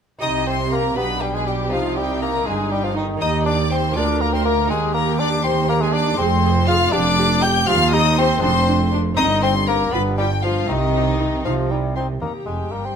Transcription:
0.19 C2 C3 D#4 G4 D#5 D#6
0.47 C4 C5 C6
0.72 A#3 A#4 A#5
0.94 B1 B2 B3 D4 G4 B4 B5
1.21 G3 G4 G5
1.34 G#3 G#4 G#5
1.47 G3 G4 G5
1.68 C2 C4 D#4 G4
1.72 C3 F3 D#4 F4 F5
1.96 G3 G4 G5
2.21 A#3 A#4 A#5
2.46 G1 G2 G#3 G#4 G#5
2.71 G3 G4 G5
2.84 F3 F4 F5
2.96 D#3 D#4 D#5
3.17 A#3 D#4 G4 D#5
3.21 D#2 D#4 G4 D#6
3.46 D4 D5 D6
3.71 C4 C5 C6
3.91 A#3 F4 A#4
3.95 D2 D4 A#4 D5 D6
4.20 A#3 A#4 A#5
4.33 C4 C5 C6
4.44 A#3 A#4 A#5
4.65 A#3 D#4 G4
4.69 D#2 G#3 G4 G#4 G#5
4.94 A#3 A#4 A#5
5.19 D4 D5 D6
5.44 D#2 D#3 C4 C5 C6
5.69 A#3 A#4 A#5
5.81 G#3 G#4 G#5
5.93 D4 D5 D6
6.14 G#3 C4 C5
6.18 F1 F2 C4 G#4 C6
6.44 G#4
6.67 F4 G#4 F5 F6
6.91 F1 F2 B3 D4 G4 D5 D6
7.18 G4
7.42 G4 G5 G6
7.65 D#2 C4 F4 G4 F5 F6
7.92 D#4 G4 D#5 D#6
8.17 C4 G4 C5 C6
8.38 F1 G#3 D4 F4
8.43 F2 C4 D4 C5 C6
8.68 D4
8.92 D4
9.14 G1 G2 C4 D#4 D#5 D#6
9.42 C4 C5 C6
9.67 A#3 C4 A#4 A#5
9.89 G1 G2 B3 D4 F4 B4 B5
9.93 G2
10.18 G3 F4 G4 G5
10.43 F3 F4 F5
10.66 C2 C3 D#3 C4 D#4 D#5
10.95 D#4
11.20 D#4
11.45 C2 C3 F3 D#4 F5
11.70 G3 D#4 G5
11.96 C4 D#4 C6
12.21 D#2 A#3 D#4 G4 G5 A#5
12.46 F1 F2 G#3 G#5
12.71 G1 G2 A#3 A#5
12.85 C4 C6

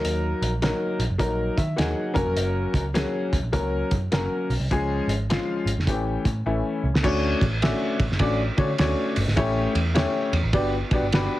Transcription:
Already playing: F#3 A#3 D#4 A#4
0.04 D#2, closed hi-hat
0.42 A#1, closed hi-hat
0.62 F#3 A#3 D#4 A#4, snare, closed hi-hat
0.99 A#1, closed hi-hat
1.10 F#1
1.18 A#1 F#3 A#3 D#4 A#4, kick, closed hi-hat
1.57 D#3 E5, kick, closed hi-hat
1.76 D#2 F#3 A#3 D#4 G#4 F#5, snare, closed hi-hat
2.14 F#1 F#3 A#3 C#4 A#4 G#5, kick, closed hi-hat
2.26 F1
2.36 F#1, closed hi-hat
2.74 C#2, kick, closed hi-hat
2.94 F#3 A#3 C#4 G#4, snare, closed hi-hat
3.33 C#2, kick, closed hi-hat
3.43 A#1
3.52 C#2 F#3 A#3 C#4 A#4, kick, closed hi-hat
3.91 F#2, kick, closed hi-hat
4.12 F#1 F#3 A#3 C#4 A#4, snare, closed hi-hat
4.50 B1, open hi-hat
4.60 C2
4.71 C#2 F3 G#3 C#4 G#4, kick, closed hi-hat
5.07 G#1, closed hi-hat
5.30 F3 G#3 C#4 F4, snare, closed hi-hat
5.65 G#1, closed hi-hat
5.77 F1, snare
5.87 A1 E3 A3 C#4 G4, kick, closed hi-hat
6.25 A2, kick, closed hi-hat
6.46 A1 E3 A3 C#4 E4
6.83 C2
6.94 C#2, snare
7.03 D2 A3 C#4 D4 F#4 C#5, kick, crash
7.41 A1, kick, ride
7.62 A3 C#4 D4 F#4 E5, snare, ride
8.00 A1, kick, ride
8.10 F#1, snare
8.19 A1 A3 C#4 D4 F#4 D5, kick, ride
8.57 D3 A3 C#4 D4 F#4 C#5, kick, ride
8.78 D2 A3 C#4 D4 F#4 C#5, snare, ride
9.16 G1, open hi-hat, ride
9.28 G#1, snare
9.36 A1 A3 C#4 E4 G4 C#5, kick, hi-hat pedal, ride
9.75 E2, ride
9.94 A3 C#4 E4 G4 C#5, snare, ride
10.33 E2, ride
10.43 A1
10.53 G1 B3 D4 F#4 G4 D5, kick, ride
10.91 B1 B3 D4 F#4 G4 D5, kick, ride
11.02 G1
11.13 G1 B3 D4 F#4 G4 B4, snare, ride

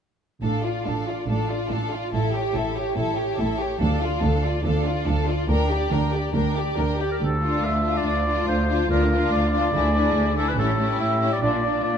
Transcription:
0.43 A1 A2 D4 A4 F5
0.64 F4 D5
0.86 A1 A2 D4 A4 F5
1.08 F4 D5
1.28 A1 A2 D4 A4 F5
1.49 F4 D5
1.70 A1 A2 D4 A4 F5
1.91 F4 D5
2.12 A1 A2 E4 A4 E5
2.33 G4 C#5
2.55 A1 A2 E4 A4 E5
2.75 G4 C#5
2.96 A1 A2 E4 A4 E5
3.16 G4 C#5
3.38 A1 A2 E4 A4 E5
3.59 G4 C#5
3.80 D2 D4 A4 F5
4.01 F4 D5
4.22 D2 D4 A4 F5
4.43 F4 D5
4.64 D2 D4 A4 F5
4.85 F4 D5
5.06 D2 D4 A4 F5
5.28 F4 D5
5.49 D2 D4 A#4 G5
5.70 G4 D5
5.92 D2 D4 A#4 G5
6.13 G4 D5
6.34 D2 D4 A#4 G5
6.56 G4 D5
6.77 D2 D4 A#4 G5
6.99 G4 D5
7.11 A#4
7.21 D2 A4
7.42 D4 F4
7.64 D2 E5
7.83 D4 F4
7.97 D5
8.06 D2 D5
8.27 D4 F4
8.48 D2 C5
8.69 D4 F4
8.89 D2 D4 F4 A#4
9.11 D4 F4
9.32 D2 D5
9.53 D4 F4
9.74 D2 D4 E4 G#4
9.95 D4 E4 G#4
10.16 D2
10.37 D4 E4 G#4 A4
10.49 B4
10.58 A1 A2 C#4 E4 G4 A4
10.79 C#4 E4 G4
11.00 A2 E5
11.21 C#4 E4 G4
11.32 D5
11.42 A#1 A#2 D4 F4 D5
11.63 D4 F4
11.84 A#2 D5

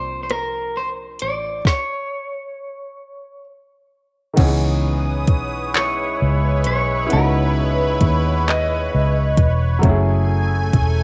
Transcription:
Already playing: C2 F3 A#3 C4 D4 G4 C5
0.23 C5
0.30 A#4, cross-stick, closed hi-hat
0.77 C5
1.19 A1 D5, closed hi-hat
1.65 C#5, kick, snare
4.34 D#3 B3, closed hi-hat, crash
4.38 C#2 E3 C#4 D#4 B4 C#5 D#6, kick
4.44 G#4
5.28 B1, kick, closed hi-hat
5.74 G#3 B3 E4 C#5, clap, closed hi-hat
6.22 C#2
6.64 B1 C#5, closed hi-hat
7.06 B3 E4, closed hi-hat
7.11 C#2 C#4 D#4 B4
7.16 F#4
8.01 D#2, kick, closed hi-hat
8.48 D#5, clap, closed hi-hat
8.95 C#2
9.37 E1, kick, closed hi-hat
9.79 F#3 A3
9.83 F#1 C#4 E4 G#5, kick, closed hi-hat
9.89 G#4
10.73 E1, kick, closed hi-hat

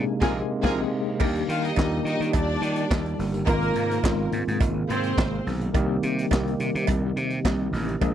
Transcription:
Already playing: C3 G#3 A#3 C4 D4 D#4
0.21 A#1 C3 G#3 A#3 C4 D#4 F4 G#4 A#4 G#5, kick, snare, crash
0.63 A#1 C3 G#3 A#3 C4 D#4 F4 G#4 A#4 G#5, kick, snare, crash
1.20 D#2 D#3 G3 A#3 D4 G4, kick, crash, cowbell
1.36 closed hi-hat
1.49 D#3 F4 F5, closed hi-hat
1.63 D#4 D#5, closed hi-hat
1.76 D#2 D#3 G3 A#3 D4 F4, kick, snare, clap, cowbell
1.84 G4
2.05 D#3 D#4 D#5, closed hi-hat
2.20 D#3, closed hi-hat
2.33 D#2 D4 D5, kick, closed hi-hat, cowbell
2.62 D#3, closed hi-hat
2.76 closed hi-hat
2.90 D#2, kick, snare, clap, cowbell
3.06 closed hi-hat
3.19 G1, snare, open hi-hat
3.34 closed hi-hat
3.46 G#1 C3 D#3 G#3 A#3 C4 F4 A#4, kick, closed hi-hat, cowbell
3.63 closed hi-hat
3.75 G#2, closed hi-hat
3.91 closed hi-hat
4.03 G#1 D#3 G#3 A#3 B3 F4, kick, snare, clap, cowbell
4.10 C4
4.32 G#2, closed hi-hat
4.48 G#2, closed hi-hat
4.60 G#1, kick, closed hi-hat, cowbell
4.89 G#2 C4 C5, closed hi-hat
5.04 closed hi-hat
5.18 G#1, kick, snare, clap, cowbell
5.47 B1, snare, open hi-hat
5.61 closed hi-hat
5.73 C2 D#3 G3 A#3 C4 D#4 G4, kick, closed hi-hat, cowbell
6.03 C3, closed hi-hat
6.19 closed hi-hat
6.31 C2 D#3 G3 A#3 C4 G4, kick, snare, clap, cowbell
6.48 closed hi-hat
6.60 C3, closed hi-hat
6.75 C3, closed hi-hat
6.87 C2, kick, closed hi-hat, cowbell
7.16 C3, closed hi-hat
7.30 closed hi-hat
7.45 C2, kick, snare, clap, cowbell
7.73 A1, snare, open hi-hat
7.89 closed hi-hat
8.01 A#1 D3 F3 G#3 A#3 D4 F4 G#4, kick, closed hi-hat, cowbell

